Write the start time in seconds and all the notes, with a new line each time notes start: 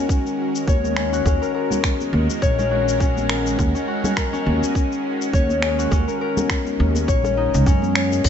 Already playing: D#3 G#3 C#4 F#4 A#4
0.09 kick, shaker
0.26 shaker
0.55 shaker
0.67 D#2 C#5, kick, shaker
0.84 high conga, shaker
0.97 C#4, finger snap
1.13 F#4, shaker
1.26 D#2 C#4, kick, high bongo, shaker
1.42 A#4, shaker
1.54 A#4
1.71 high bongo, high conga, low conga, shaker
1.84 finger snap, kick, shaker
2.01 high conga, shaker
2.13 D#2
2.30 high conga, shaker
2.42 A#1 C#5, kick, shaker
2.58 C#4, high bongo, low conga, shaker
2.71 F#4
2.88 shaker
3.00 C#4, kick, shaker
3.17 high conga, shaker
3.29 A#4, finger snap
3.47 shaker
3.59 D#2, kick, high bongo, shaker
3.75 C#4, shaker
3.88 F#4
4.04 C#4, high bongo, high conga, low conga, shaker
4.17 A#4, finger snap, kick, shaker
4.32 C#4, high conga, shaker
4.46 D#2
4.63 high conga, shaker
4.75 kick, shaker
4.92 shaker
5.22 shaker
5.33 D#2 C#5, kick, shaker
5.49 high conga, shaker
5.62 C#4, finger snap
5.79 F#4, shaker
5.91 D#2 C#4, kick, high bongo, shaker
6.08 A#4, shaker
6.21 A#4
6.37 high bongo, high conga, low conga, shaker
6.50 finger snap, kick, shaker
6.66 high conga, shaker
6.80 D#2
6.95 high bongo, high conga, shaker
7.08 A#1 C#5, kick, shaker
7.24 C#4, high bongo, low conga, shaker
7.37 D#4
7.54 C#2, shaker
7.66 F#2 C#4, kick, shaker
7.82 high conga, shaker
7.95 C#5, finger snap
8.12 high conga, shaker
8.24 D#2, kick, crash, high bongo, shaker